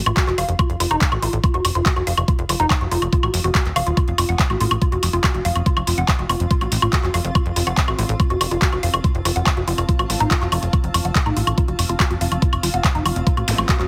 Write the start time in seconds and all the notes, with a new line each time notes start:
Already playing: C4 F4 F5 C6
0.06 A1 F4, closed hi-hat, high woodblock
0.17 F#4, kick, clap, closed hi-hat
0.27 F1 F#4, clap, closed hi-hat
0.38 F1 F5, open hi-hat, high woodblock
0.48 F1, closed hi-hat
0.59 F4, kick, closed hi-hat, high woodblock
0.70 F1, closed hi-hat
0.80 F1 F4, open hi-hat
0.91 F1 D#4, closed hi-hat, high woodblock
1.01 kick, clap, closed hi-hat
1.12 A1 F#4, closed hi-hat, high woodblock
1.22 A1 F4, open hi-hat
1.29 A1 D#6, closed hi-hat
1.44 F4, kick, closed hi-hat, high woodblock
1.54 F1 F#4, closed hi-hat
1.65 F1, open hi-hat, high woodblock
1.75 F1 F4, closed hi-hat
1.86 F#4, kick, clap, closed hi-hat
1.96 F1 F#4, closed hi-hat, high woodblock
2.07 F1 F5, open hi-hat
2.18 F1, closed hi-hat, high woodblock
2.28 F4, kick, closed hi-hat
2.39 F1, closed hi-hat
2.49 F1 F4, open hi-hat, high woodblock
2.60 F1 D#4, closed hi-hat
2.70 kick, clap, closed hi-hat, high woodblock
2.81 F1 F#4, closed hi-hat
2.91 F1 F4, open hi-hat
3.02 F1, closed hi-hat, high woodblock
3.13 F4, kick, closed hi-hat
3.23 A1 F#4, closed hi-hat, high woodblock
3.34 F1, open hi-hat
3.44 F1 F#4, closed hi-hat
3.55 F#4, kick, clap, closed hi-hat, high woodblock
3.65 D#1, clap, closed hi-hat
3.76 D#1 F5, open hi-hat, high woodblock
3.87 D#1 F4, closed hi-hat
3.97 F4, kick, closed hi-hat, high woodblock
4.08 F1, closed hi-hat
4.18 F1 F4, open hi-hat, high woodblock
4.29 F1 F#5, closed hi-hat
4.39 kick, clap, closed hi-hat
4.50 A1 F#4, closed hi-hat, high woodblock
4.60 A1 F4, open hi-hat
4.67 A1 C6, closed hi-hat, high woodblock
4.82 F4, kick, closed hi-hat
4.92 F1 F#4, closed hi-hat
5.03 F1, open hi-hat, high woodblock
5.13 F1 F4, closed hi-hat
5.24 F#4, kick, clap, closed hi-hat, high woodblock
5.34 F1 F#4, closed hi-hat
5.45 F1 F5, open hi-hat
5.56 F1, closed hi-hat, high woodblock
5.66 F4, kick, closed hi-hat
5.77 F1, closed hi-hat, high woodblock
5.87 F1 F4, open hi-hat
5.98 F1 F#5, closed hi-hat
6.08 kick, clap, closed hi-hat, high woodblock
6.19 F1 F#4, closed hi-hat
6.29 F1 F4, open hi-hat, high woodblock
6.40 F1, closed hi-hat
6.51 F4, kick, closed hi-hat
6.61 A1 F#4, closed hi-hat, high woodblock
6.72 A1, open hi-hat
6.82 A1 F4, closed hi-hat, high woodblock
6.93 F#4, kick, clap, closed hi-hat
7.03 F1 F#4, clap, closed hi-hat
7.14 F1 F5, open hi-hat, high woodblock
7.25 F1, closed hi-hat
7.35 F4, kick, closed hi-hat, high woodblock
7.46 F1, closed hi-hat
7.56 F1 F4, open hi-hat
7.67 F1 F#5, closed hi-hat, high woodblock
7.77 kick, clap, closed hi-hat
7.88 A1 F#4, closed hi-hat, high woodblock
7.99 A1 F4, open hi-hat
8.05 A1 A5, closed hi-hat
8.20 F4, kick, closed hi-hat, high woodblock
8.30 F1 F#4, closed hi-hat
8.41 F1, open hi-hat, high woodblock
8.51 F1 F4, closed hi-hat
8.62 F#4, kick, clap, closed hi-hat
8.72 F1 F#4, closed hi-hat, high woodblock
8.83 F1 F5, open hi-hat
8.94 F1, closed hi-hat, high woodblock
9.04 F4, kick, closed hi-hat
9.15 F1, closed hi-hat
9.25 F1 F4, open hi-hat, high woodblock
9.36 F1 F#5, closed hi-hat
9.46 kick, clap, closed hi-hat, high woodblock
9.57 F1 F#4, closed hi-hat
9.68 F1 F4, open hi-hat
9.78 F1, closed hi-hat, high woodblock
9.89 F4, kick, closed hi-hat, swell
9.99 A1 F#4, closed hi-hat, high woodblock
10.10 A1 F4, open hi-hat
10.20 A1 D#4, closed hi-hat
10.31 F4, kick, clap, closed hi-hat, high woodblock
10.41 F1 F#4, clap, closed hi-hat
10.52 F1 F4, open hi-hat, high woodblock
10.63 F1, closed hi-hat
10.73 F4, kick, closed hi-hat, high woodblock
10.84 F1, closed hi-hat
10.94 F1 F4, open hi-hat, high woodblock
11.05 F1 F#5, closed hi-hat
11.15 kick, clap, closed hi-hat
11.26 A1 D#4, closed hi-hat, high woodblock
11.37 A1 F4, open hi-hat
11.43 A1 C6, closed hi-hat, high woodblock
11.58 F4, kick, closed hi-hat
11.68 F1 F#4, closed hi-hat
11.79 F1, open hi-hat, high woodblock
11.89 F1 F4, closed hi-hat
12.00 F#4, kick, clap, closed hi-hat, high woodblock
12.10 F1 F#4, closed hi-hat
12.21 F1 F5, open hi-hat
12.32 F1, closed hi-hat, high woodblock
12.42 F4, kick, closed hi-hat
12.53 F1, closed hi-hat, high woodblock
12.63 F1 F4, open hi-hat
12.74 F1 F#5, closed hi-hat
12.84 kick, clap, closed hi-hat, high woodblock
12.95 F1 D#4, closed hi-hat
13.06 F1 F4, open hi-hat, high woodblock
13.16 F1, closed hi-hat
13.27 F4, kick, closed hi-hat
13.37 A1 F#4, closed hi-hat, high woodblock
13.48 A1, open hi-hat, zap
13.58 A1 F4, closed hi-hat, high woodblock
13.69 F#4, kick, clap, closed hi-hat
13.80 F1 F#4, clap, closed hi-hat